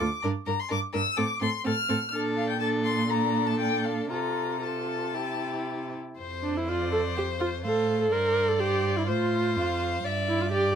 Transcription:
0.00 0.09 D2 medium
0.00 0.08 F4 medium
0.00 0.23 D6 medium
0.23 0.32 G2 medium
0.23 0.32 D4 medium
0.23 0.31 A#4 medium
0.46 0.55 G2 medium
0.46 0.56 D4 soft
0.46 0.54 A#4 medium
0.46 0.61 A#5 medium
0.60 0.71 C6 medium
0.69 0.80 G2 medium
0.69 0.79 D4 medium
0.69 0.77 A#4 medium
0.69 0.79 D6 medium
0.93 1.03 G2 medium
0.93 1.02 D4 medium
0.93 1.01 A#4 medium
0.93 1.19 E6 medium
1.17 1.27 A2 medium
1.17 1.25 C4 medium
1.17 1.25 A4 medium
1.17 1.41 D6 medium
1.41 1.50 A2 medium
1.41 1.49 C4 soft
1.41 1.49 A4 soft
1.41 1.65 C6 medium
1.64 1.75 A2 medium
1.64 1.72 C4 medium
1.64 1.74 A4 medium
1.64 2.13 F6 medium
1.89 1.97 A2 medium
1.89 1.97 C4 medium
1.89 1.97 A4 soft
2.13 4.07 A#2 medium
2.13 2.57 D4 medium
2.13 2.58 A4 medium
2.37 2.48 F5 medium
2.49 2.59 G5 medium
2.60 3.08 D4 medium
2.60 3.08 A4 medium
2.60 2.68 A5 medium
2.85 3.11 C6 medium
3.09 4.12 D4 medium
3.09 4.08 A4 medium
3.09 3.48 A#5 medium
3.47 3.59 A5 medium
3.60 3.86 G5 medium
3.84 4.09 F5 medium
4.10 5.94 C3 soft
4.10 4.61 F4 soft
4.10 4.61 A4 soft
4.10 4.64 A#5 medium
4.61 5.16 F4 soft
4.61 5.16 A4 soft
4.61 5.92 A5 medium
5.14 5.97 E4 soft
5.14 5.97 G4 soft
6.18 7.66 F2 medium
6.18 6.64 C5 soft
6.18 6.64 C5 medium
6.43 6.59 D4 medium
6.57 6.70 E4 medium
6.69 6.91 F4 medium
6.69 7.63 C5 medium
6.69 7.18 D5 medium
6.92 7.00 A4 medium
7.16 7.25 G4 medium
7.16 7.63 C5 medium
7.40 7.48 F4 medium
7.64 8.12 A2 medium
7.64 8.00 A4 medium
7.64 8.11 C5 soft
7.64 8.11 F5 medium
8.01 8.14 A4 medium
8.11 9.10 G2 medium
8.11 8.50 A#4 medium
8.11 8.58 C5 medium
8.11 9.09 D5 medium
8.49 8.61 A4 medium
8.59 8.99 G4 medium
8.59 9.07 C5 medium
8.97 9.07 E4 medium
9.07 9.58 A2 medium
9.07 9.79 F4 medium
9.07 10.06 C5 medium
9.07 9.56 C5 medium
9.56 10.04 F2 medium
9.56 10.07 F5 medium
10.04 10.75 G2 medium
10.04 10.52 D5 medium
10.04 10.55 E5 medium
10.29 10.42 E4 medium
10.41 10.52 F4 medium
10.52 10.75 G4 medium
10.52 10.75 D5 medium

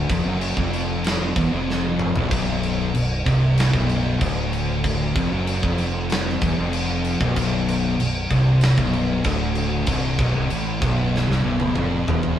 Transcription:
0.09 0.25 F1 medium
0.09 0.25 F2 loud
0.09 kick loud
0.09 crash medium
0.25 0.55 F#1 loud
0.25 0.56 F#2 loud
0.41 crash medium
0.57 1.32 F1 loud
0.57 1.36 F2 loud
0.57 kick loud
0.73 crash medium
1.04 snare loud
1.04 crash medium
1.36 1.51 E1 medium
1.36 1.52 E2 loud
1.36 kick loud
1.36 crash medium
1.52 2.12 F1 medium
1.52 2.14 F2 loud
1.70 snare medium
1.99 mid tom loud
2.15 2.30 B0 loud
2.15 2.29 B1 loud
2.15 floor tom loud
2.30 2.91 B0 loud
2.30 2.93 B1 loud
2.30 kick loud
2.30 crash loud
2.63 crash medium
2.94 3.25 B0 medium
2.94 3.20 B1 medium
2.94 crash medium
3.26 3.71 C1 loud
3.26 3.72 C2 loud
3.26 kick loud
3.26 crash medium
3.58 snare loud
3.58 crash medium
3.73 4.18 B0 loud
3.73 4.20 B1 loud
3.73 kick loud
3.73 snare soft
3.89 crash medium
4.21 5.12 D1 loud
4.21 5.15 D2 loud
4.21 kick loud
4.21 crash medium
4.53 crash medium
4.84 kick loud
4.84 crash medium
5.16 5.31 F1 loud
5.16 5.31 F2 loud
5.16 kick loud
5.16 crash medium
5.32 5.61 F#1 medium
5.32 5.64 F#2 loud
5.47 crash medium
5.63 6.38 F1 loud
5.63 6.41 F2 loud
5.63 kick loud
5.78 crash medium
6.10 snare loud
6.10 crash medium
6.29 snare soft
6.41 6.57 E1 medium
6.41 6.57 E2 loud
6.41 kick loud
6.41 crash medium
6.58 7.17 F1 medium
6.58 7.20 F2 loud
6.73 crash medium
7.04 crash medium
7.20 7.36 B0 loud
7.20 7.35 B1 loud
7.20 kick loud
7.36 7.96 B0 loud
7.36 7.97 B1 loud
7.36 kick loud
7.36 crash medium
7.68 crash medium
7.98 8.29 B0 medium
7.98 8.24 B1 medium
7.98 crash medium
8.30 8.75 C1 loud
8.30 8.77 C2 loud
8.30 kick loud
8.30 crash medium
8.61 snare loud
8.61 crash loud
8.77 9.22 B0 loud
8.77 9.25 B1 loud
8.77 kick loud
8.93 crash medium
9.24 9.84 D1 loud
9.24 9.87 D2 loud
9.24 kick loud
9.24 crash medium
9.55 crash medium
9.86 10.17 C1 loud
9.86 10.18 C2 loud
9.86 kick loud
9.86 crash medium
10.18 10.34 B0 loud
10.18 10.34 B1 loud
10.18 kick loud
10.18 crash medium
10.34 10.50 C1 loud
10.34 10.50 C2 loud
10.50 10.80 A1 loud
10.50 10.81 A2 loud
10.50 crash medium
10.81 11.26 B0 loud
10.81 11.28 B1 loud
10.81 kick loud
10.81 crash medium
11.16 snare medium
11.29 11.44 C1 loud
11.29 11.43 C2 loud
11.29 snare medium
11.44 11.74 B0 medium
11.44 11.75 B1 loud
11.60 high tom medium
11.76 12.06 F1 loud
11.76 12.07 F2 loud
11.76 mid tom medium
12.08 12.37 E1 loud
12.08 12.37 E2 loud
12.08 floor tom loud
12.23 floor tom loud

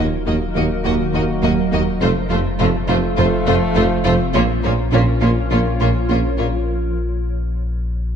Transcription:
0.00 2.03 D#1 medium
0.00 2.01 F#3 medium
0.00 1.97 A#3 medium
0.00 0.15 D#4 medium
0.00 2.01 D#4 medium
0.00 1.97 F#4 medium
0.00 1.98 A#4 medium
0.00 2.02 D#5 medium
0.26 0.35 D#2 medium
0.26 0.39 D#2 medium
0.26 0.44 F#3 medium
0.26 0.34 A#3 medium
0.26 0.34 F#4 medium
0.26 0.35 D#5 medium
0.55 0.63 D#2 medium
0.55 0.64 D#2 medium
0.55 0.68 D#2 medium
0.55 0.64 A#3 medium
0.55 0.63 F#4 medium
0.55 0.64 D#5 medium
0.84 0.92 D#2 medium
0.84 0.93 D#2 medium
0.84 0.97 D#2 medium
0.84 1.02 D#3 loud
0.84 0.92 A#3 medium
0.84 0.92 F#4 medium
0.84 0.93 D#5 medium
1.13 1.21 D#2 medium
1.13 1.22 D#2 medium
1.13 1.26 D#2 medium
1.13 1.22 A#3 medium
1.13 1.22 F#4 medium
1.13 1.23 D#5 medium
1.43 1.51 D#2 medium
1.43 1.55 D#2 medium
1.43 1.51 D#2 medium
1.43 1.61 F#3 medium
1.43 1.51 A#3 medium
1.43 1.51 F#4 medium
1.43 1.51 D#5 medium
1.72 1.80 D#2 medium
1.72 1.84 D#2 medium
1.72 1.80 D#2 medium
1.72 1.80 A#3 medium
1.72 1.90 A#3 medium
1.72 1.80 F#4 medium
1.72 1.81 D#5 medium
2.01 2.13 F1 medium
2.01 2.09 F1 medium
2.01 4.37 F1 medium
2.01 2.09 F2 medium
2.01 2.19 F3 loud
2.01 4.34 F3 loud
2.01 4.31 A3 loud
2.01 2.10 A3 medium
2.01 4.30 F4 loud
2.01 2.10 F4 medium
2.01 4.34 F4 medium
2.01 4.35 A4 medium
2.01 2.10 C5 medium
2.01 4.35 C5 loud
2.30 2.42 F1 medium
2.30 2.39 F1 medium
2.30 2.38 F2 medium
2.30 2.39 A3 medium
2.30 2.38 F4 medium
2.30 2.48 F4 medium
2.30 2.38 C5 medium
2.59 2.71 F1 medium
2.59 2.68 F1 medium
2.59 2.67 F2 loud
2.59 2.77 A3 medium
2.59 2.68 A3 medium
2.59 2.67 F4 medium
2.59 2.68 C5 medium
2.88 3.00 F1 medium
2.88 2.97 F1 medium
2.88 2.97 F2 loud
2.88 2.97 A3 medium
2.88 2.96 F4 medium
2.88 2.96 C5 medium
3.18 3.29 F1 medium
3.18 3.26 F1 medium
3.18 3.26 F2 medium
3.18 3.36 F3 loud
3.18 3.26 A3 medium
3.18 3.26 F4 medium
3.18 3.26 C5 medium
3.46 3.58 F1 medium
3.46 3.55 F1 loud
3.46 3.55 F2 loud
3.46 3.56 A3 medium
3.46 3.54 F4 medium
3.46 3.55 C5 medium
3.75 3.87 F1 loud
3.75 3.84 F1 medium
3.75 3.84 F2 loud
3.75 3.84 A3 medium
3.75 3.94 A3 medium
3.75 3.83 F4 medium
3.75 3.83 C5 medium
4.04 4.17 F1 medium
4.04 4.13 F1 medium
4.04 4.13 F2 medium
4.04 4.14 A3 medium
4.04 4.23 C4 medium
4.04 4.12 F4 medium
4.04 4.14 C5 medium
4.34 4.46 A#1 loud
4.34 4.42 A#1 loud
4.34 8.16 A#1 medium
4.34 4.43 A#2 loud
4.34 6.64 F3 medium
4.34 4.52 A#3 loud
4.34 4.43 A#3 loud
4.34 6.63 C#4 loud
4.34 4.42 F4 medium
4.34 6.63 F4 loud
4.34 6.64 F4 medium
4.34 6.68 A#4 loud
4.34 4.42 C#5 medium
4.34 6.68 C#5 medium
4.63 4.71 A#1 medium
4.63 4.75 A#1 medium
4.63 4.73 A#2 medium
4.63 4.72 A#3 medium
4.63 4.72 F4 medium
4.63 4.81 A#4 medium
4.63 4.72 C#5 medium
4.92 5.00 A#1 loud
4.92 5.04 A#1 loud
4.92 5.01 A#2 loud
4.92 5.01 A#3 medium
4.92 5.10 C#4 medium
4.92 5.00 F4 medium
4.92 5.01 C#5 medium
5.22 5.33 A#1 loud
5.22 5.30 A#1 medium
5.22 5.30 A#2 loud
5.22 5.31 A#3 medium
5.22 5.30 F4 medium
5.22 5.30 C#5 medium
5.51 5.63 A#1 medium
5.51 5.59 A#1 medium
5.51 5.59 A#2 medium
5.51 5.68 A#3 loud
5.51 5.60 A#3 medium
5.51 5.59 F4 medium
5.51 5.59 C#5 medium
5.80 5.91 A#1 medium
5.80 5.88 A#1 medium
5.80 5.88 A#2 medium
5.80 5.89 A#3 medium
5.80 5.88 F4 medium
5.80 5.88 C#5 medium
6.09 6.21 A#1 medium
6.09 6.17 A#1 medium
6.09 6.17 A#2 medium
6.09 6.17 A#3 medium
6.09 6.27 C#4 medium
6.09 6.17 F4 medium
6.09 6.18 C#5 medium
6.38 6.50 A#1 medium
6.38 6.46 A#1 medium
6.38 6.46 A#2 medium
6.38 6.47 A#3 medium
6.38 6.46 F4 medium
6.38 6.56 F4 medium
6.38 6.46 C#5 medium

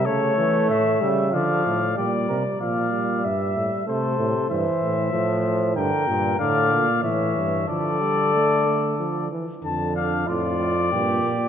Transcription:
0.05 0.37 C#3 medium
0.05 1.03 A3 loud
0.05 0.68 A4 medium
0.05 0.69 C#5 medium
0.38 0.71 E3 medium
0.69 1.02 A2 medium
0.69 1.01 C#5 medium
0.69 1.10 E5 medium
1.01 1.33 C#3 medium
1.01 1.34 G3 medium
1.01 1.35 E5 medium
1.33 1.65 D3 medium
1.33 1.96 F3 medium
1.33 1.96 D5 medium
1.33 1.93 F5 medium
1.66 1.97 A2 medium
1.97 2.27 A#2 medium
1.97 2.57 G3 medium
1.97 2.11 G4 medium
1.97 2.57 D5 medium
2.29 2.44 C3 medium
2.29 2.43 A#4 medium
2.61 3.24 A#2 medium
2.61 2.94 F3 medium
2.61 3.26 D5 medium
2.61 3.26 F5 medium
2.92 3.86 G3 medium
3.24 3.56 G2 medium
3.24 3.87 E5 medium
3.56 3.71 A2 medium
3.87 4.19 C3 medium
3.87 4.18 A3 medium
3.87 4.49 A4 medium
3.87 4.49 C5 medium
4.18 4.33 A2 medium
4.18 4.49 C3 medium
4.50 4.65 G2 medium
4.50 5.12 E3 medium
4.50 5.12 C5 medium
4.50 5.74 E5 medium
4.82 5.13 A2 medium
5.13 5.76 A2 medium
5.13 5.78 F3 medium
5.13 5.75 C5 medium
5.76 5.91 G2 medium
5.76 6.09 D3 medium
5.76 6.39 A#4 medium
5.76 6.39 G5 medium
6.08 6.39 G2 medium
6.08 6.39 A#2 loud
6.39 6.73 A2 medium
6.39 6.87 D3 medium
6.39 7.03 D5 medium
6.39 7.03 F5 medium
6.72 7.03 A#2 medium
7.03 7.36 A2 medium
7.03 7.67 E3 medium
7.03 7.67 C#5 medium
7.03 7.67 E5 medium
7.36 7.68 G2 medium
7.68 9.28 D3 medium
7.68 8.02 F3 medium
7.68 9.28 A4 medium
7.68 9.28 D5 medium
8.01 8.33 G3 medium
8.34 8.66 A3 medium
8.66 8.98 A3 medium
8.99 9.31 F3 medium
9.31 9.46 E3 medium
9.64 10.24 F2 medium
9.64 10.24 D3 medium
9.64 9.94 A5 medium
9.95 10.29 D4 medium
9.95 10.27 F5 medium
10.27 10.94 F2 medium
10.27 10.59 A2 medium
10.27 10.91 F4 medium
10.27 11.48 D5 medium
10.59 10.74 A2 medium
10.91 11.22 G2 medium
10.91 11.48 A#2 medium
10.91 11.48 G4 medium
11.22 11.37 A#2 medium

